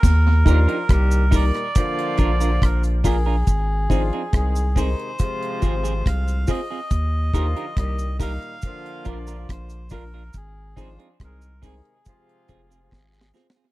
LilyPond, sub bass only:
\new Staff \with { instrumentName = "Sub bass" } { \clef bass \time 4/4 \key f \dorian \tempo 4 = 70 ees,8 ees,16 r16 c,8. r8. bes,,8 bes,,4 | aes,,8 aes,,16 r16 c,8. r8. aes,,8 c,8 r8 | ees,8 ees,16 r16 c,8. r8. bes,,8 bes,,4 | aes,,8 aes,,16 r16 c,8. r8. f,,8 aes,,8 r8 | }